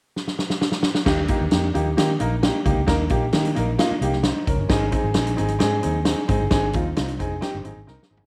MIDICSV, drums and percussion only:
0, 0, Header, 1, 2, 480
1, 0, Start_track
1, 0, Tempo, 453858
1, 1130, Time_signature, 4, 2, 24, 8
1, 8736, End_track
2, 0, Start_track
2, 0, Title_t, "Drums"
2, 173, Note_on_c, 9, 38, 45
2, 279, Note_off_c, 9, 38, 0
2, 291, Note_on_c, 9, 38, 46
2, 397, Note_off_c, 9, 38, 0
2, 410, Note_on_c, 9, 38, 59
2, 516, Note_off_c, 9, 38, 0
2, 528, Note_on_c, 9, 38, 64
2, 634, Note_off_c, 9, 38, 0
2, 650, Note_on_c, 9, 38, 76
2, 755, Note_off_c, 9, 38, 0
2, 758, Note_on_c, 9, 38, 67
2, 864, Note_off_c, 9, 38, 0
2, 875, Note_on_c, 9, 38, 99
2, 981, Note_off_c, 9, 38, 0
2, 1000, Note_on_c, 9, 38, 87
2, 1106, Note_off_c, 9, 38, 0
2, 1123, Note_on_c, 9, 36, 93
2, 1123, Note_on_c, 9, 38, 108
2, 1123, Note_on_c, 9, 49, 72
2, 1229, Note_off_c, 9, 36, 0
2, 1229, Note_off_c, 9, 38, 0
2, 1229, Note_off_c, 9, 49, 0
2, 1356, Note_on_c, 9, 42, 69
2, 1367, Note_on_c, 9, 36, 87
2, 1462, Note_off_c, 9, 42, 0
2, 1472, Note_off_c, 9, 36, 0
2, 1597, Note_on_c, 9, 42, 69
2, 1603, Note_on_c, 9, 38, 97
2, 1703, Note_off_c, 9, 42, 0
2, 1708, Note_off_c, 9, 38, 0
2, 1850, Note_on_c, 9, 42, 76
2, 1956, Note_off_c, 9, 42, 0
2, 2093, Note_on_c, 9, 38, 93
2, 2093, Note_on_c, 9, 42, 92
2, 2198, Note_off_c, 9, 42, 0
2, 2199, Note_off_c, 9, 38, 0
2, 2324, Note_on_c, 9, 42, 64
2, 2430, Note_off_c, 9, 42, 0
2, 2569, Note_on_c, 9, 38, 99
2, 2571, Note_on_c, 9, 42, 86
2, 2675, Note_off_c, 9, 38, 0
2, 2677, Note_off_c, 9, 42, 0
2, 2809, Note_on_c, 9, 36, 84
2, 2811, Note_on_c, 9, 42, 79
2, 2915, Note_off_c, 9, 36, 0
2, 2917, Note_off_c, 9, 42, 0
2, 3042, Note_on_c, 9, 38, 101
2, 3042, Note_on_c, 9, 42, 73
2, 3043, Note_on_c, 9, 36, 95
2, 3148, Note_off_c, 9, 38, 0
2, 3148, Note_off_c, 9, 42, 0
2, 3149, Note_off_c, 9, 36, 0
2, 3273, Note_on_c, 9, 42, 65
2, 3284, Note_on_c, 9, 36, 81
2, 3379, Note_off_c, 9, 42, 0
2, 3390, Note_off_c, 9, 36, 0
2, 3516, Note_on_c, 9, 42, 71
2, 3522, Note_on_c, 9, 38, 111
2, 3622, Note_off_c, 9, 42, 0
2, 3628, Note_off_c, 9, 38, 0
2, 3648, Note_on_c, 9, 42, 61
2, 3753, Note_off_c, 9, 42, 0
2, 3767, Note_on_c, 9, 42, 78
2, 3873, Note_off_c, 9, 42, 0
2, 4007, Note_on_c, 9, 42, 86
2, 4008, Note_on_c, 9, 38, 100
2, 4113, Note_off_c, 9, 42, 0
2, 4114, Note_off_c, 9, 38, 0
2, 4250, Note_on_c, 9, 42, 63
2, 4355, Note_off_c, 9, 42, 0
2, 4363, Note_on_c, 9, 38, 28
2, 4469, Note_off_c, 9, 38, 0
2, 4477, Note_on_c, 9, 38, 91
2, 4479, Note_on_c, 9, 42, 74
2, 4583, Note_off_c, 9, 38, 0
2, 4584, Note_off_c, 9, 42, 0
2, 4730, Note_on_c, 9, 42, 75
2, 4731, Note_on_c, 9, 36, 76
2, 4836, Note_off_c, 9, 42, 0
2, 4837, Note_off_c, 9, 36, 0
2, 4965, Note_on_c, 9, 38, 92
2, 4966, Note_on_c, 9, 36, 103
2, 4966, Note_on_c, 9, 42, 82
2, 5071, Note_off_c, 9, 38, 0
2, 5072, Note_off_c, 9, 36, 0
2, 5072, Note_off_c, 9, 42, 0
2, 5203, Note_on_c, 9, 42, 64
2, 5210, Note_on_c, 9, 36, 76
2, 5309, Note_off_c, 9, 42, 0
2, 5315, Note_off_c, 9, 36, 0
2, 5436, Note_on_c, 9, 42, 77
2, 5442, Note_on_c, 9, 38, 99
2, 5542, Note_off_c, 9, 42, 0
2, 5547, Note_off_c, 9, 38, 0
2, 5570, Note_on_c, 9, 42, 64
2, 5676, Note_off_c, 9, 42, 0
2, 5689, Note_on_c, 9, 42, 72
2, 5794, Note_off_c, 9, 42, 0
2, 5800, Note_on_c, 9, 42, 50
2, 5906, Note_off_c, 9, 42, 0
2, 5922, Note_on_c, 9, 42, 86
2, 5923, Note_on_c, 9, 38, 92
2, 6028, Note_off_c, 9, 42, 0
2, 6029, Note_off_c, 9, 38, 0
2, 6164, Note_on_c, 9, 42, 65
2, 6269, Note_off_c, 9, 42, 0
2, 6399, Note_on_c, 9, 38, 90
2, 6401, Note_on_c, 9, 42, 86
2, 6505, Note_off_c, 9, 38, 0
2, 6506, Note_off_c, 9, 42, 0
2, 6647, Note_on_c, 9, 42, 72
2, 6651, Note_on_c, 9, 36, 81
2, 6752, Note_off_c, 9, 42, 0
2, 6757, Note_off_c, 9, 36, 0
2, 6881, Note_on_c, 9, 38, 98
2, 6882, Note_on_c, 9, 42, 76
2, 6888, Note_on_c, 9, 36, 99
2, 6987, Note_off_c, 9, 38, 0
2, 6988, Note_off_c, 9, 42, 0
2, 6994, Note_off_c, 9, 36, 0
2, 7121, Note_on_c, 9, 42, 65
2, 7132, Note_on_c, 9, 36, 92
2, 7226, Note_off_c, 9, 42, 0
2, 7238, Note_off_c, 9, 36, 0
2, 7366, Note_on_c, 9, 42, 77
2, 7371, Note_on_c, 9, 38, 110
2, 7472, Note_off_c, 9, 42, 0
2, 7477, Note_off_c, 9, 38, 0
2, 7491, Note_on_c, 9, 42, 57
2, 7596, Note_off_c, 9, 42, 0
2, 7613, Note_on_c, 9, 42, 72
2, 7615, Note_on_c, 9, 36, 73
2, 7719, Note_off_c, 9, 42, 0
2, 7721, Note_off_c, 9, 36, 0
2, 7848, Note_on_c, 9, 42, 84
2, 7849, Note_on_c, 9, 38, 97
2, 7954, Note_off_c, 9, 38, 0
2, 7954, Note_off_c, 9, 42, 0
2, 8087, Note_on_c, 9, 42, 60
2, 8192, Note_off_c, 9, 42, 0
2, 8329, Note_on_c, 9, 38, 47
2, 8434, Note_off_c, 9, 38, 0
2, 8489, Note_on_c, 9, 38, 66
2, 8594, Note_off_c, 9, 38, 0
2, 8643, Note_on_c, 9, 43, 100
2, 8736, Note_off_c, 9, 43, 0
2, 8736, End_track
0, 0, End_of_file